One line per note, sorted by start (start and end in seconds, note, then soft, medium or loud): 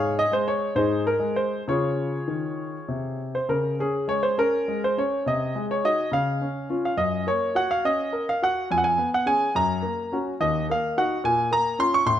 0.00 0.23 G#2 medium
0.00 0.16 G#4 medium
0.00 0.16 C#5 medium
0.00 0.13 F5 medium
0.19 0.33 D#5 medium
0.32 0.67 G#3 medium
0.32 0.47 C5 medium
0.48 0.72 C#5 medium
0.75 1.11 G#2 medium
0.75 1.04 D#4 medium
0.75 1.04 G#4 medium
0.75 1.01 C5 medium
1.07 1.36 A#4 medium
1.20 1.56 G#3 medium
1.36 1.62 C5 medium
1.68 2.16 C#3 medium
1.68 3.16 F4 medium
1.68 3.16 G#4 medium
1.68 3.19 C#5 medium
2.28 2.76 D#3 soft
2.88 3.37 C3 soft
3.35 3.49 C5 medium
3.49 3.77 C#3 soft
3.49 3.74 A#4 medium
3.79 4.10 C#4 soft
3.79 4.05 G#4 medium
4.08 4.38 G#3 soft
4.08 4.23 C#5 medium
4.23 4.37 C5 medium
4.38 4.68 C#4 soft
4.38 4.82 A#4 medium
4.68 4.98 G#3 soft
4.84 4.97 C5 medium
4.98 5.26 C#4 soft
4.98 5.22 C#5 medium
5.26 5.53 C3 medium
5.26 5.63 D#5 medium
5.55 5.85 G#3 soft
5.71 5.84 C#5 medium
5.84 6.05 D#4 soft
5.84 6.05 F#4 soft
5.84 6.09 D#5 medium
6.12 6.40 C#3 medium
6.12 6.74 F5 medium
6.41 6.68 C#4 soft
6.70 6.90 C#4 soft
6.70 6.90 F4 soft
6.85 6.99 F5 medium
6.97 7.25 F#2 medium
6.97 7.26 D#5 medium
7.27 7.57 A#3 soft
7.27 7.56 C#5 medium
7.55 7.85 F#4 soft
7.55 7.70 F#5 medium
7.71 7.84 F5 medium
7.85 8.14 C#4 soft
7.85 8.28 D#5 medium
8.13 8.43 A#4 soft
8.29 8.42 F5 medium
8.42 8.70 F#4 soft
8.42 8.67 F#5 medium
8.71 8.98 F2 medium
8.71 8.77 G#5 medium
8.78 8.84 F#5 medium
8.84 9.08 G#5 medium
8.98 9.28 B3 soft
9.14 9.27 F#5 medium
9.26 9.46 C#4 soft
9.26 9.46 G#4 soft
9.26 9.55 G#5 medium
9.55 9.82 F#2 medium
9.55 10.16 A#5 medium
9.82 10.12 A#3 soft
10.12 10.32 C#4 soft
10.12 10.33 F#4 soft
10.41 10.67 D#2 medium
10.41 10.64 D#5 medium
10.70 10.98 A#3 medium
10.70 10.97 F5 medium
10.97 11.17 D#4 soft
10.97 11.17 F#4 medium
10.97 11.20 F#5 medium
11.24 11.50 A#2 medium
11.24 11.52 G#5 medium
11.51 11.80 A#3 soft
11.51 11.80 A#5 loud
11.79 11.99 C#4 soft
11.79 11.99 F4 soft
11.79 11.93 C6 loud
11.94 12.07 C#6 medium
12.06 12.20 A2 medium
12.06 12.20 C6 loud